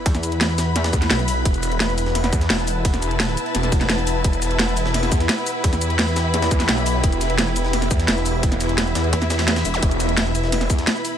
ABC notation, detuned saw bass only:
X:1
M:4/4
L:1/8
Q:1/4=172
K:Em
V:1 name="Detuned saw bass" clef=bass
z4 z E,, B,,,2 | E,,,4- E,,, E,, E,,,2- | E,,, E,,,2 z E,,,4 | E,,,4- E,,, E,, z2 |
z4 z E,, B,,,2 | E,,,4- E,,, E,, E,,,2- | E,,,3 E,, z4 | E,,,4- E,,, E,, z2 |]